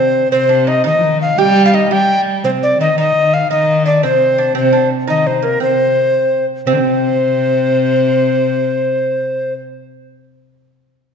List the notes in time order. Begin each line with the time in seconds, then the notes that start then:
Already playing: C3 C4 C5
0.31 C3 C4 C5
0.49 D4
0.67 D#4 D#5
0.84 D#3 D#4 D#5
0.96 F3
1.01 D#3
1.21 F5
1.37 G3 G4 G5
1.65 F4 F5
1.73 D#4 D#5
1.90 G3 G4 G5
2.44 C3 C4 C5
2.63 D5
2.79 D#3 D#4 D#5
2.96 D#3 D#4 D#5
3.15 D#3
3.34 F5
3.51 D#3 D#4 D#5
3.86 D4 D5
4.03 C3 C4 C5
4.38 D4
4.55 C3 C4 C5
4.73 D4
5.08 D#3 D#4 D#5
5.27 C3 C5
5.42 A#3 A#4
5.60 C3 C4 C5
6.66 C3 C4 C5
6.73 D3
6.79 C3